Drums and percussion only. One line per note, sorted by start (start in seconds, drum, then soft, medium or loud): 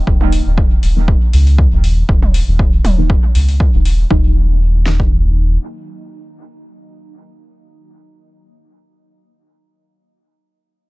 0.07 kick loud
0.21 high tom medium
0.32 open hi-hat medium
0.58 kick loud
0.83 open hi-hat medium
1.08 kick loud
1.33 open hi-hat medium
1.47 open hi-hat soft
1.58 kick medium
1.84 open hi-hat medium
2.09 kick loud
2.22 high tom medium
2.34 open hi-hat medium
2.59 kick loud
2.85 open hi-hat medium
2.85 high tom medium
3.10 kick loud
3.35 open hi-hat medium
3.49 open hi-hat soft
3.60 kick medium
3.85 open hi-hat medium
4.11 kick loud
4.86 snare medium
5.00 kick medium